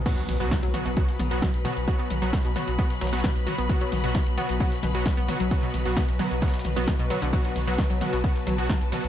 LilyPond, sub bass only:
\new Staff \with { instrumentName = "Sub bass" } { \clef bass \time 4/4 \key c \lydian \tempo 4 = 132 r8 b,,16 b,,16 r16 b,,16 r16 b,,16 r8 b,,16 b,,16 r16 b,,16 r16 b,,16 | r8 b,,16 b,,16 r16 b,,16 r16 b,,16 r8 b,,16 b,,16 r16 b,,16 r16 b,,16 | r8 b,,16 b,,16 r16 b,,16 r16 b,,16 r8 b,,16 b,,16 r16 b,,16 r16 b,,16 | r8 b,,16 b,,16 r16 b,,16 r16 b,,16 r8 b,,16 b,,16 r16 b,,16 r16 b,,16 |
r8 b,,16 b,,16 r16 b,,16 r16 b,,16 r8 b,,16 b,,16 r16 b,,16 r16 b,,16 | }